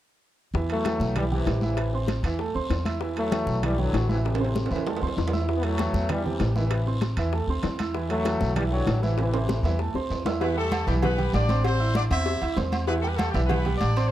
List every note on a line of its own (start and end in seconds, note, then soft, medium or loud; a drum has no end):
0.54 0.97 E2 medium
0.54 0.80 E3 medium
0.54 0.80 E4 medium
0.54 0.80 E5 medium
0.54 high bongo medium
0.54 high conga soft
0.54 long guiro medium
0.70 1.14 F#3 medium
0.70 1.14 A3 loud
0.70 high bongo soft
0.70 high conga soft
0.70 high timbale medium
0.84 1.11 E3 medium
0.84 1.11 E4 medium
0.84 1.11 G5 medium
0.84 high bongo medium
0.84 high conga medium
0.84 high timbale medium
0.84 low timbale medium
0.84 short guiro medium
1.00 1.43 B1 medium
1.00 high conga medium
1.00 short guiro medium
1.16 1.29 E3 medium
1.16 1.24 E3 medium
1.16 1.23 G3 medium
1.16 1.29 E4 medium
1.16 1.29 E5 medium
1.16 high bongo medium
1.16 high conga soft
1.16 low conga medium
1.16 high timbale medium
1.16 long guiro medium
1.32 1.61 C3 medium
1.32 1.60 E3 medium
1.32 1.57 G3 medium
1.32 1.57 G4 medium
1.32 1.57 G5 medium
1.32 high bongo soft
1.32 high conga soft
1.32 low conga medium
1.46 2.18 A1 medium
1.46 high bongo soft
1.46 low bongo medium
1.46 high conga medium
1.46 high timbale medium
1.46 low timbale medium
1.46 short guiro medium
1.61 2.06 C3 medium
1.61 1.88 E3 medium
1.61 2.06 E3 medium
1.61 1.88 E4 medium
1.61 1.88 E5 medium
1.61 high bongo soft
1.61 high conga medium
1.61 short guiro medium
1.77 high bongo medium
1.77 high timbale medium
1.77 long guiro medium
1.92 2.19 C4 medium
1.92 2.19 C5 medium
1.92 2.19 C6 medium
1.92 high bongo soft
1.92 high conga soft
2.08 high bongo medium
2.08 high conga medium
2.08 high timbale medium
2.08 low timbale medium
2.08 short guiro medium
2.23 2.52 E2 medium
2.23 2.37 E3 medium
2.23 2.37 E4 medium
2.23 2.38 E5 medium
2.23 high conga soft
2.23 high timbale medium
2.23 short guiro medium
2.39 2.52 A3 medium
2.39 2.52 A4 medium
2.39 2.52 A5 medium
2.39 high bongo medium
2.39 high conga soft
2.39 long guiro medium
2.54 2.69 D2 medium
2.54 2.80 C4 medium
2.54 2.80 C5 medium
2.54 2.80 C6 medium
2.54 high bongo soft
2.54 high conga soft
2.70 3.42 E2 medium
2.70 high bongo soft
2.70 low bongo medium
2.70 high conga soft
2.70 high timbale medium
2.70 low timbale medium
2.70 short guiro medium
2.85 2.98 E4 medium
2.85 2.98 E5 medium
2.85 2.99 E6 medium
2.85 high bongo soft
2.85 high conga medium
2.85 high timbale medium
2.85 short guiro medium
3.00 3.26 E3 medium
3.00 3.26 E4 medium
3.00 3.27 E5 medium
3.00 high bongo medium
3.00 long guiro medium
3.17 3.60 F#3 medium
3.17 3.60 A3 loud
3.17 high bongo soft
3.17 high conga soft
3.17 high timbale medium
3.31 3.57 E3 medium
3.31 3.57 E4 medium
3.31 3.57 G5 medium
3.31 high bongo medium
3.31 high conga loud
3.31 high timbale medium
3.31 low timbale medium
3.31 short guiro medium
3.47 3.90 B1 loud
3.47 high conga medium
3.47 short guiro medium
3.63 3.76 E3 medium
3.63 3.78 E3 medium
3.63 3.78 G3 medium
3.63 3.76 E4 medium
3.63 3.76 E5 medium
3.63 high bongo medium
3.63 high conga soft
3.63 low conga medium
3.63 high timbale loud
3.63 long guiro medium
3.78 4.10 D3 medium
3.78 4.04 E3 medium
3.78 4.10 F#3 medium
3.78 4.04 E4 medium
3.78 4.04 G5 medium
3.78 high bongo soft
3.78 high conga soft
3.78 low conga medium
3.93 4.65 A1 medium
3.93 high bongo soft
3.93 low bongo medium
3.93 high conga medium
3.93 high timbale medium
3.93 low timbale medium
3.93 short guiro medium
4.09 4.17 C3 medium
4.09 4.34 E3 medium
4.09 4.17 E3 medium
4.09 4.34 E4 medium
4.09 4.35 E5 medium
4.09 high bongo soft
4.09 high conga medium
4.09 short guiro medium
4.25 4.83 A2 medium
4.25 4.83 C3 medium
4.25 high bongo medium
4.25 high timbale medium
4.25 long guiro medium
4.35 high timbale medium
4.40 4.65 C4 medium
4.40 4.66 C5 medium
4.40 4.66 C6 medium
4.40 high bongo soft
4.40 high conga soft
4.45 high timbale medium
4.56 high bongo medium
4.56 high conga medium
4.56 short guiro medium
4.66 high timbale loud
4.71 4.99 E2 medium
4.71 4.84 E3 medium
4.71 4.84 E4 medium
4.71 4.84 E5 medium
4.71 high conga soft
4.71 short guiro medium
4.76 high timbale medium
4.86 4.99 A3 medium
4.86 4.99 A4 medium
4.86 5.00 A5 medium
4.86 high bongo medium
4.86 high conga soft
4.86 low timbale medium
4.86 long guiro medium
4.96 low timbale loud
5.02 5.16 D2 medium
5.02 5.27 C4 medium
5.02 5.27 C5 medium
5.02 5.28 C6 medium
5.02 high bongo soft
5.02 high conga soft
5.07 low timbale medium
5.17 5.89 E2 medium
5.17 high bongo soft
5.17 low bongo medium
5.17 high conga soft
5.17 low timbale medium
5.17 short guiro medium
5.28 low timbale medium
5.33 5.45 E4 medium
5.33 5.46 E5 medium
5.33 5.46 E6 medium
5.33 high bongo soft
5.33 high conga medium
5.33 short guiro medium
5.38 low timbale medium
5.48 5.74 E3 medium
5.48 5.74 E4 medium
5.48 5.74 E5 medium
5.48 high bongo medium
5.48 high conga soft
5.48 long guiro medium
5.56 5.63 B3 medium
5.63 6.09 F#3 medium
5.63 6.09 A3 loud
5.63 high bongo soft
5.63 high conga soft
5.63 high timbale medium
5.78 6.04 E3 medium
5.78 6.04 E4 medium
5.78 6.04 G5 medium
5.78 high bongo medium
5.78 high conga medium
5.78 high timbale medium
5.78 low timbale medium
5.78 short guiro medium
5.93 6.37 E2 medium
5.93 high conga medium
5.93 short guiro medium
6.09 6.22 E3 medium
6.09 6.24 E3 medium
6.09 6.25 G3 medium
6.09 6.22 E4 medium
6.09 6.22 E5 medium
6.09 high bongo medium
6.09 high conga soft
6.09 low conga medium
6.09 high timbale medium
6.09 long guiro medium
6.25 6.54 C3 medium
6.25 6.54 E3 medium
6.25 6.50 G3 medium
6.25 6.50 G4 medium
6.25 6.50 G5 medium
6.25 high bongo soft
6.25 high conga soft
6.25 low conga medium
6.40 7.12 A1 medium
6.40 high bongo soft
6.40 low bongo medium
6.40 high conga medium
6.40 high timbale medium
6.40 low timbale medium
6.40 short guiro medium
6.55 6.99 C3 medium
6.55 6.81 E3 medium
6.55 6.99 E3 medium
6.55 6.81 E4 medium
6.55 6.81 E5 medium
6.55 high bongo soft
6.55 high conga medium
6.55 short guiro medium
6.71 high bongo medium
6.71 high timbale medium
6.71 long guiro medium
6.87 7.12 C4 medium
6.87 7.12 C5 medium
6.87 7.12 C6 medium
6.87 high bongo soft
6.87 high conga soft
7.01 high bongo medium
7.01 high conga loud
7.01 high timbale medium
7.01 low timbale medium
7.01 short guiro medium
7.17 7.46 E2 medium
7.17 7.31 E3 medium
7.17 7.31 E4 medium
7.17 7.31 E5 medium
7.17 high conga soft
7.17 high timbale medium
7.17 short guiro medium
7.33 7.46 A3 medium
7.33 7.46 A4 medium
7.33 7.46 A5 medium
7.33 high bongo medium
7.33 high conga soft
7.33 long guiro medium
7.47 7.62 D2 medium
7.47 7.74 C4 medium
7.47 7.74 C5 medium
7.47 7.75 C6 medium
7.47 high bongo soft
7.47 high conga soft
7.63 8.35 E2 medium
7.63 high bongo soft
7.63 low bongo medium
7.63 high conga soft
7.63 high timbale medium
7.63 low timbale medium
7.63 short guiro medium
7.79 7.92 E4 medium
7.79 7.92 E5 medium
7.79 7.92 E6 medium
7.79 high bongo soft
7.79 high conga medium
7.79 high timbale medium
7.79 short guiro medium
7.94 8.20 E3 medium
7.94 8.20 E4 medium
7.94 8.20 E5 medium
7.94 high bongo medium
7.94 high conga soft
7.94 long guiro medium
8.09 8.53 F#3 medium
8.09 8.53 A3 loud
8.09 high bongo soft
8.09 high conga soft
8.09 high timbale medium
8.25 8.51 E3 medium
8.25 8.51 E4 medium
8.25 8.51 G5 medium
8.25 high bongo medium
8.25 high conga loud
8.25 high timbale medium
8.25 low timbale medium
8.25 short guiro medium
8.41 8.84 B1 medium
8.41 high conga medium
8.41 short guiro medium
8.56 8.69 E3 medium
8.56 8.64 E3 medium
8.56 8.63 G3 loud
8.56 8.69 E4 medium
8.56 8.70 E5 medium
8.56 high bongo medium
8.56 high conga soft
8.56 low conga medium
8.56 high timbale loud
8.56 long guiro medium
8.71 9.00 D3 medium
8.71 8.97 E3 medium
8.71 9.00 F#3 loud
8.71 8.97 E4 medium
8.71 8.98 G5 medium
8.71 high bongo soft
8.71 high conga soft
8.87 9.59 A1 medium
8.87 high bongo soft
8.87 low bongo medium
8.87 high conga medium
8.87 high timbale medium
8.87 low timbale medium
8.87 short guiro medium
9.02 9.17 C3 medium
9.02 9.28 E3 medium
9.02 9.17 E3 medium
9.02 9.28 E4 medium
9.02 9.28 E5 medium
9.02 high bongo soft
9.02 high conga medium
9.02 short guiro medium
9.18 9.76 C3 medium
9.18 9.76 E3 medium
9.18 high bongo medium
9.18 high conga soft
9.18 high timbale loud
9.18 long guiro medium
9.33 9.59 C4 medium
9.33 9.59 C5 medium
9.33 9.59 C6 medium
9.33 high bongo soft
9.33 high conga soft
9.33 high timbale medium
9.49 high bongo medium
9.49 high conga loud
9.49 high timbale medium
9.49 short guiro medium
9.63 9.92 E2 medium
9.63 9.77 E3 medium
9.63 9.77 E4 medium
9.63 9.78 E5 medium
9.63 high conga soft
9.63 low timbale medium
9.63 short guiro medium
9.79 9.92 A3 medium
9.79 9.92 A4 medium
9.79 9.93 A5 medium
9.79 high bongo medium
9.79 high conga soft
9.79 long guiro medium
9.94 10.09 D2 medium
9.94 10.20 C4 medium
9.94 10.21 C5 medium
9.94 10.21 C6 medium
9.94 high bongo medium
9.94 high conga soft
10.10 10.82 E2 medium
10.10 high conga soft
10.10 low timbale medium
10.10 short guiro medium
10.26 10.39 E4 medium
10.26 10.39 E5 medium
10.26 10.39 E6 medium
10.26 low bongo medium
10.26 high conga medium
10.26 low timbale medium
10.26 short guiro medium
10.41 10.54 E3 medium
10.41 10.56 B3 medium
10.41 10.54 E4 medium
10.41 10.56 B4 medium
10.41 10.54 E5 medium
10.41 cowbell loud
10.41 high conga soft
10.41 low agogo medium
10.41 long guiro medium
10.56 10.82 G3 medium
10.56 10.87 A3 medium
10.56 10.82 G4 medium
10.56 10.86 A4 medium
10.56 10.82 G5 medium
10.56 high conga soft
10.72 cowbell medium
10.72 high conga loud
10.72 low agogo loud
10.72 short guiro medium
10.87 11.30 B1 loud
10.87 11.13 E3 medium
10.87 10.96 G3 medium
10.87 11.13 E4 medium
10.87 10.95 G4 medium
10.87 11.13 E5 medium
10.87 cowbell medium
10.87 high conga soft
10.87 short guiro medium
11.03 11.33 B3 medium
11.03 11.32 B4 medium
11.03 cowbell loud
11.03 high conga soft
11.03 low conga loud
11.03 low agogo loud
11.03 long guiro medium
11.17 11.43 G3 medium
11.17 11.43 G4 medium
11.17 11.44 G5 medium
11.17 cowbell medium
11.17 high conga soft
11.17 low conga medium
11.33 12.05 A1 medium
11.33 11.63 D4 medium
11.33 11.63 D5 loud
11.33 cowbell medium
11.33 high conga medium
11.33 low timbale medium
11.33 low agogo medium
11.33 short guiro medium
11.48 11.75 C4 medium
11.48 11.75 C5 medium
11.48 11.75 C6 medium
11.48 cowbell medium
11.48 high conga medium
11.48 low agogo medium
11.48 short guiro medium
11.64 11.94 C4 medium
11.64 11.94 C5 loud
11.64 cowbell loud
11.64 high conga soft
11.64 low agogo loud
11.64 long guiro medium
11.80 12.05 E4 medium
11.80 12.05 E5 medium
11.80 12.06 E6 medium
11.80 high conga soft
11.94 12.04 D4 medium
11.94 12.04 D5 loud
11.94 cowbell medium
11.94 high conga loud
11.94 low agogo medium
11.94 short guiro medium
12.11 12.39 E2 loud
12.11 12.36 C4 medium
12.11 12.55 E4 medium
12.11 12.37 C5 medium
12.11 12.55 E5 loud
12.11 12.37 C6 medium
12.11 cowbell medium
12.11 low agogo loud
12.11 short guiro medium
12.26 cowbell loud
12.26 high conga soft
12.26 long guiro medium
12.41 12.56 D2 medium
12.41 12.55 E4 medium
12.41 12.55 E5 medium
12.41 12.55 E6 medium
12.41 high conga soft
12.41 low agogo medium
12.57 13.29 E2 loud
12.57 12.82 C4 medium
12.57 12.82 C5 medium
12.57 12.82 C6 medium
12.57 cowbell medium
12.57 high conga medium
12.57 low timbale medium
12.57 short guiro medium
12.72 cowbell medium
12.72 high conga medium
12.72 low agogo loud
12.72 short guiro medium
12.87 13.00 E3 medium
12.87 12.96 B3 medium
12.87 13.01 E4 medium
12.87 12.95 B4 medium
12.87 13.01 E5 medium
12.87 cowbell loud
12.87 high conga soft
12.87 low agogo medium
12.87 long guiro medium
13.02 13.29 G3 medium
13.02 13.10 A3 medium
13.02 13.29 G4 medium
13.02 13.09 A4 medium
13.02 13.29 G5 medium
13.02 high conga soft
13.09 13.17 B4 medium
13.16 13.34 A3 medium
13.16 13.33 A4 medium
13.16 cowbell medium
13.16 high conga loud
13.16 low agogo loud
13.16 short guiro medium
13.32 13.77 B1 loud
13.32 13.60 E3 medium
13.32 13.41 G3 medium
13.32 13.60 E4 medium
13.32 13.39 G4 medium
13.32 13.60 E5 medium
13.32 cowbell medium
13.32 high conga soft
13.32 short guiro medium
13.46 13.78 B3 medium
13.46 13.77 B4 loud
13.46 cowbell loud
13.46 low agogo loud
13.46 long guiro medium
13.51 high conga soft
13.51 low conga medium
13.65 13.91 G3 medium
13.65 13.91 G4 medium
13.65 13.91 G5 medium
13.65 cowbell medium
13.65 high conga soft
13.65 low conga medium
13.78 14.11 A1 medium
13.78 14.09 D4 medium
13.78 14.08 D5 loud
13.78 cowbell medium
13.78 high conga medium
13.78 low agogo medium
13.78 short guiro medium
13.96 14.11 C4 medium
13.96 14.11 C5 medium
13.96 14.11 C6 medium
13.96 cowbell medium
13.96 low agogo medium
13.96 short guiro medium
14.08 14.11 C5 loud